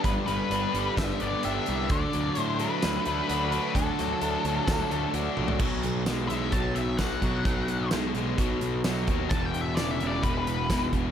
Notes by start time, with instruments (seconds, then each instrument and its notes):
Already playing: overdriven electric guitar D3 G3 B3 D4 G4
0.03 picked electric bass G1, overdriven electric guitar G2, lead electric guitar B4, kick, closed hi-hat
0.26 picked electric bass G1, overdriven electric guitar G3, lead electric guitar B4, closed hi-hat
0.50 picked electric bass G1, overdriven electric guitar B3 D4, closed hi-hat
0.74 picked electric bass G1, overdriven electric guitar G3, closed hi-hat
0.97 picked electric bass G1, overdriven electric guitar D3 B3, lead electric guitar E5, kick, snare, closed hi-hat, tambourine
1.20 picked electric bass G1, overdriven electric guitar B3 D4, lead electric guitar D5, closed hi-hat
1.43 picked electric bass G1, overdriven electric guitar D4 G4, lead electric guitar E5, closed hi-hat
1.66 picked electric bass C2, overdriven electric guitar G3 B3, closed hi-hat
1.90 picked electric bass D2, overdriven electric guitar D3, lead electric guitar D5, kick, closed hi-hat
2.13 picked electric bass D2, overdriven electric guitar F#3, closed hi-hat
2.35 picked electric bass A2, overdriven electric guitar A3 D4, closed hi-hat
2.40 lead electric guitar C5
2.59 overdriven electric guitar F#3, lead electric guitar B4, closed hi-hat
2.82 picked electric bass D2, overdriven electric guitar D3 A3, snare, closed hi-hat, tambourine
3.06 picked electric bass D2, overdriven electric guitar A3 D4, closed hi-hat
3.29 picked electric bass D2, overdriven electric guitar D4 F#4, closed hi-hat
3.51 overdriven electric guitar F#3 A3, lead electric guitar B4, closed hi-hat
3.75 picked electric bass D2, overdriven electric guitar D3, lead electric guitar A4, kick, closed hi-hat
3.98 picked electric bass D2, overdriven electric guitar F#3, snare, closed hi-hat
4.22 picked electric bass D2, overdriven electric guitar A3 D4, closed hi-hat
4.45 picked electric bass D2, overdriven electric guitar F#3, closed hi-hat
4.68 picked electric bass D2, overdriven electric guitar D3 A3, kick, snare, closed hi-hat, tambourine
4.90 picked electric bass D2, overdriven electric guitar A3 D4, closed hi-hat
5.14 picked electric bass D2, overdriven electric guitar D4 F#4, closed hi-hat
5.37 picked electric bass A#1, overdriven electric guitar F#3 A3, high tom
5.48 floor tom
5.59 picked electric bass B1, overdriven electric guitar B2 F#3, kick, crash
5.83 picked electric bass B1, closed hi-hat
6.06 picked electric bass B1, overdriven electric guitar B2 G#3, snare, closed hi-hat, tambourine
6.28 picked electric bass B1, overdriven electric guitar B2 G#3, lead electric guitar E5, closed hi-hat
6.52 picked electric bass B1, overdriven electric guitar B2 F#3, lead electric guitar A5, kick, closed hi-hat
6.75 picked electric bass B1, lead electric guitar E5, closed hi-hat
6.97 picked electric bass B1, overdriven electric guitar B2 F#3, lead electric guitar F#5, kick, snare, closed hi-hat, tambourine
7.22 picked electric bass B1, overdriven electric guitar B2 F#3, kick, closed hi-hat
7.45 picked electric bass B1, overdriven electric guitar B2 F#3, kick, closed hi-hat
7.68 picked electric bass B1, closed hi-hat
7.91 picked electric bass B1, overdriven electric guitar B2 G#3, snare, closed hi-hat, tambourine
8.15 picked electric bass B1, overdriven electric guitar B2 G#3, closed hi-hat
8.38 picked electric bass B1, overdriven electric guitar B2 F#3, kick, closed hi-hat
8.61 picked electric bass B1, closed hi-hat
8.84 picked electric bass B1, overdriven electric guitar B2 F#3, snare, closed hi-hat, tambourine
9.07 picked electric bass D#2, overdriven electric guitar B2 F#3, kick, closed hi-hat
9.30 picked electric bass E1, overdriven electric guitar E2 B2, lead electric guitar A5, kick, closed hi-hat
9.46 lead electric guitar G5
9.54 picked electric bass E1, closed hi-hat
9.61 lead electric guitar E5
9.76 picked electric bass E1, overdriven electric guitar E2 C#3, lead electric guitar D5, snare, closed hi-hat, tambourine
9.91 lead electric guitar E5
10.01 picked electric bass E1, overdriven electric guitar E2 C#3, closed hi-hat
10.07 lead electric guitar D5
10.23 picked electric bass E1, overdriven electric guitar E2 B2, lead electric guitar B4, kick, closed hi-hat
10.38 lead electric guitar B4
10.47 picked electric bass E1, closed hi-hat
10.70 picked electric bass E1, overdriven electric guitar E2 B2, kick, snare, closed hi-hat, tambourine
10.93 picked electric bass E1, overdriven electric guitar E2 B2, kick, closed hi-hat